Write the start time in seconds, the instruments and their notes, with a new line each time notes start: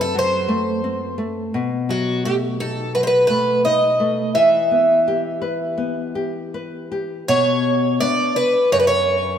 Already playing: nylon-string guitar F#2 C4
0.01 twelve-string acoustic guitar A4
0.15 nylon-string guitar F#3, twelve-string acoustic guitar C5
0.48 nylon-string guitar A3
0.84 nylon-string guitar C4
1.18 nylon-string guitar A3
1.54 nylon-string guitar B2
1.89 nylon-string guitar F#3, twelve-string acoustic guitar F#4
2.25 nylon-string guitar A3, twelve-string acoustic guitar G4
2.60 nylon-string guitar D#4, twelve-string acoustic guitar A4
2.95 nylon-string guitar F#3, twelve-string acoustic guitar B4
3.03 twelve-string acoustic guitar C5
3.07 twelve-string acoustic guitar B4
3.27 nylon-string guitar A3, twelve-string acoustic guitar B4
3.65 nylon-string guitar D#4, twelve-string acoustic guitar D#5
4.00 nylon-string guitar A3
4.35 nylon-string guitar E3, twelve-string acoustic guitar E5
4.71 nylon-string guitar B3
5.08 nylon-string guitar G4
5.42 nylon-string guitar B4
5.78 nylon-string guitar B3
6.15 nylon-string guitar G4
6.54 nylon-string guitar B4
6.92 nylon-string guitar G4
7.28 nylon-string guitar B2, twelve-string acoustic guitar C#5
8.01 nylon-string guitar B3 D4, twelve-string acoustic guitar D5
8.36 twelve-string acoustic guitar B4
8.72 nylon-string guitar F#2, twelve-string acoustic guitar C#5
8.80 twelve-string acoustic guitar B4
8.87 twelve-string acoustic guitar C#5